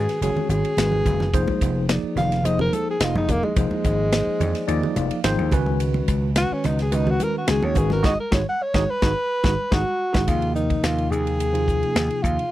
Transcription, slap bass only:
0.21 F#1
0.35 muted slap bass stroke
0.49 G#1
0.77 G#1
1.05 F#1
1.33 F1
1.61 F1
2.03 muted slap bass stroke
2.16 F1
2.44 F1
3.00 F1
3.15 F1
3.56 F1
3.71 muted slap bass stroke
3.85 G#1
4.27 muted slap bass stroke
4.40 F2
4.68 D#2
4.82 muted slap bass stroke
4.96 F1
5.24 G#1
5.38 D#2
5.52 C#2
6.08 C#2
6.51 muted slap bass stroke
6.64 C#2
6.92 C#2
7.48 C#2
7.63 D#2
7.76 G#1
8.04 G#1
8.32 G#1
8.74 G#1
9.02 G#1
9.44 G#1
9.72 G#1
10.14 G#1
10.28 D#2
10.83 D#2
11.11 D#2
11.95 D#2
12.24 D#2

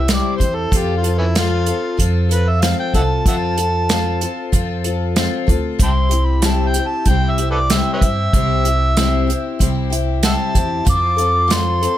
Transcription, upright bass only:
Already playing: C2
0.40 E2
0.73 F2
1.98 F2
2.94 C2
3.26 F2
4.53 F2
5.48 D2
5.80 C2
7.06 C2
8.02 G2
8.33 C2
9.60 C2
10.55 E2
10.87 F2

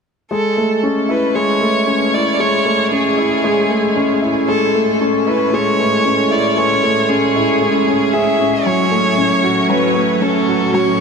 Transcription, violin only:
0.31 A4
1.10 B4
1.35 C#5
2.14 D5
2.40 C#5
2.92 G#4
4.48 A4
5.27 B4
5.54 C#5
6.31 D5
6.58 C#5
7.09 G#4
8.13 E5
8.66 C#5
9.70 B4
10.22 A4
10.74 C#5

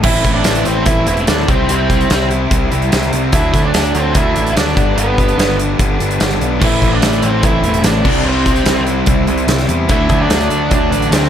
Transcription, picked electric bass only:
0.04 A1
0.24 A1
0.46 A1
0.66 A1
0.87 A1
1.07 E1
1.28 D2
1.48 C2
1.69 C2
2.10 C2
2.51 C2
2.72 C2
2.93 C2
3.13 C2
3.33 D2
3.54 D2
3.74 D2
3.95 D2
4.15 D2
4.36 A1
4.56 D2
4.77 G1
4.97 G1
5.37 G1
5.79 G1
6.00 G1
6.21 G1
6.41 B1
6.61 A1
6.82 A1
7.03 A1
7.23 A1
7.43 A1
7.63 E1
7.84 A1
8.05 C2
8.25 C2
8.66 C2
9.07 C2
9.28 C2
9.48 C2
9.68 E2
9.89 D2
10.09 D2
10.29 D2
10.51 D2
10.71 D2
10.91 A1
11.11 D2

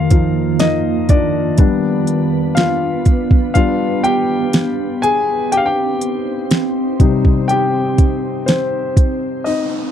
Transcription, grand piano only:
Already playing: F4 G4 F5 G5
0.10 F3 D#4 F4
0.60 D#4 D#5
1.10 D4 D5
1.58 G3 B3 D4
2.55 F4 F5
3.54 G3 B3 D4 F4 F5
4.04 G4 G5
5.02 G#4 G#5
5.52 G4 G5
5.57 F5
5.66 G4 G5
7.00 C3 G3 D#4
7.48 G4 G5
8.46 C4 C5
9.44 D#4 D#5

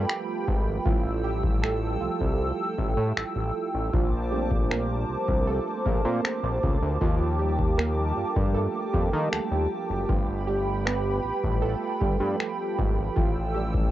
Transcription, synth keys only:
Already playing: F3 G3 A3 B3 F4 G4 A4 A#4 B4
0.85 F3 G3 A3 E4 F4
1.24 G3 G4
1.62 A3 A4
2.01 F3 F4
2.79 G3 A3 E4
3.85 G4
3.93 F3 F4
4.32 G3 A3 C4 D4 G4
4.70 A#3 A#4
5.47 A3 A4
5.86 A#3 A#4
6.05 C4 C5
7.01 F3 F4
7.39 G3 G4
7.78 A#3 A#4
8.17 G3 D4 F4 A4
8.54 A3 A4
8.93 G3 G4
9.12 F3 F4
10.09 F3 A3 B3 F4
10.47 G3 G4
10.85 B3 B4
11.62 A3 B3 F4 A4
12.00 G3 G4
12.20 F3 F4
13.16 F3 F4
13.54 G3 G4

